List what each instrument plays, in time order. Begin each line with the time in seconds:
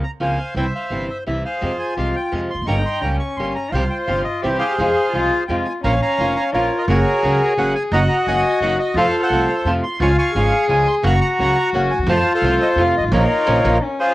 0.03 bandoneon A#5
0.20 upright bass C#2, nylon-string guitar C#3 F3 A#3 C4 F4, bandoneon C5 F5 G#5
0.55 upright bass C2, nylon-string guitar C3 E3 G3 C4 E4, bandoneon C5 E5 G5
0.75 bandoneon C5 F5
0.90 upright bass G1, nylon-string guitar C3 E3 G3 C4 E4
1.10 bandoneon E5
1.26 upright bass C2, nylon-string guitar C3 E3 G3 C4 E4, bandoneon E5
1.45 bandoneon G#4 C5 F5
1.61 upright bass F2, nylon-string guitar C3 F3 G#3 C4 G4, cello F4
1.79 bandoneon G#5
1.96 upright bass C2, nylon-string guitar C3 F3 G#3 C4 G4, bandoneon F5
2.16 bandoneon G5
2.32 upright bass F2, nylon-string guitar C3 F3 G#3 C4 G4, bandoneon G#5
2.50 bandoneon C6
2.54 upright bass E1 F1
2.62 upright bass F#1
2.67 upright bass G1, nylon-string guitar G3 A#3 C#4 G4, cello D#4, bandoneon G5 A#5 C#6
2.85 bandoneon C6
3.01 upright bass C#2, nylon-string guitar G3 A#3 C#4 G4, cello C#4, bandoneon A#5
3.20 bandoneon C#6
3.37 upright bass G1, nylon-string guitar G3 A#3 C#4 G4, bandoneon C6
3.55 bandoneon A#5
3.71 upright bass C2, nylon-string guitar C3 F3 G3 G4, cello F4, bandoneon C5 F5
3.76 nylon-string guitar C4
3.90 bandoneon G5
4.07 upright bass G1, nylon-string guitar C3 F3 G3 C4 G4, bandoneon F5
4.24 bandoneon D#5
4.43 upright bass C2, nylon-string guitar C3 E3 G3 C4 E4, cello G4, bandoneon G4 C5 E5
4.59 bandoneon G#4 C5 F5
4.78 upright bass F2, nylon-string guitar C3 F3 G#3 C4 F4, cello G#4
5.13 upright bass C2, nylon-string guitar C3 F3 G#3 C4 F4, cello F4
5.48 upright bass F2, nylon-string guitar C3 F3 G#3 C4 F4, cello F4, bandoneon G5
5.65 bandoneon G#5
5.84 upright bass A#1, nylon-string guitar F3 A#3 C#4 F4, cello C#4, bandoneon C#5 F5 A#5
6.02 bandoneon C#5 F5 A#5
6.18 upright bass F1, nylon-string guitar F3 A#3 C#4 F4
6.36 bandoneon A#5
6.53 upright bass A#1, nylon-string guitar F3 A#3 C#4 F4, bandoneon F4 A#4 C#5, cello F4
6.78 bandoneon D#5
6.88 upright bass F#1, nylon-string guitar C#3 F#3 A#3 C#4 F#4, bandoneon F#4 A#4 C#5, cello G#4
7.23 upright bass C#2, nylon-string guitar C#3 F#3 A#3 C#4 F#4
7.57 upright bass F#1, nylon-string guitar C#3 F#3 A#3 C#4 F#4, bandoneon F#5
7.75 bandoneon G#5
7.91 upright bass F#1, nylon-string guitar F#3 A#3 D#4 F#4, cello F#4, bandoneon D#5 F#5 A#5
8.09 bandoneon A#5
8.27 upright bass F#1, nylon-string guitar F#3 A#3 D#4 F#4, bandoneon D#5 G#5
8.60 upright bass F#1, nylon-string guitar F#3 A#3 D#4 F#4, bandoneon F#5
8.79 bandoneon D#5
8.94 upright bass F2, nylon-string guitar C3 F3 A3 C4 F4, cello F4, bandoneon A4 C5 F5
9.23 bandoneon A4 C5 F#5
9.30 upright bass C2, nylon-string guitar C3 F3 A3 C4 F4
9.48 bandoneon F5
9.64 upright bass F2, nylon-string guitar C3 F3 A3 C4 F4, bandoneon A5
9.83 bandoneon C6
9.99 upright bass C#2, nylon-string guitar C#3 F3 G#3 C#4 F4, cello F4, bandoneon F5 G#5 C#6
10.18 bandoneon F5 G#5 C#6
10.33 upright bass G#1, nylon-string guitar C#3 F3 G#3 C#4 F4, cello G#4
10.68 upright bass C#2, nylon-string guitar C#3 F3 G#3 C#4 F4, bandoneon G#5
10.87 bandoneon C6
11.03 upright bass F#1, nylon-string guitar C#3 F#3 A#3 C#4 F#4, cello F#4, bandoneon F#5 A#5 C#6
11.21 bandoneon F#5 A#5 C#6
11.39 upright bass C#2, nylon-string guitar C#3 F#3 A#3 C#4 F#4
11.73 upright bass F#1, nylon-string guitar C#3 F#3 A#3 C#4 F#4, bandoneon F#5
11.91 upright bass D2, bandoneon G#5
11.98 upright bass D#2
12.03 upright bass E2 F2
12.08 nylon-string guitar C3 F3 A3 C4 F4, cello F4, bandoneon C5 F5 A5
12.35 bandoneon A4 C5 F5
12.42 upright bass C2, nylon-string guitar C3 F3 A3 C4 F4
12.62 bandoneon D#5
12.76 upright bass F2, nylon-string guitar C3 F3 A3 C4 F4
12.80 bandoneon F5
12.97 upright bass G1, bandoneon D#5
13.04 upright bass G#1
13.08 upright bass A1 A#1
13.13 nylon-string guitar F3 A#3 C#4, cello D#4, bandoneon F4 A#4 C#5
13.47 upright bass A#1, nylon-string guitar F3 A#3 C#4
13.65 upright bass A#1, nylon-string guitar F3 A#3 C#4
13.83 cello C#4
14.00 bandoneon F4 G#4 C5